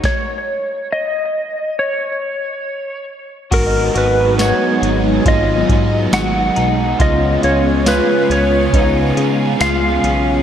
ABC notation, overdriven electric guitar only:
X:1
M:4/4
L:1/8
Q:1/4=69
K:G#dor
V:1 name="Overdriven electric guitar"
z8 | [G,,D,F,B,DG] [F,B,DG] [F,B,DG] [F,B,DG] [G,,D,F,B,DG] [F,B,DG] [F,B,DG] [F,B,DG] | [C,E,B,CG] [B,CG] [E,B,CG] [B,CG] [C,E,B,CG] [B,CG] [E,B,CG] [B,CG] |]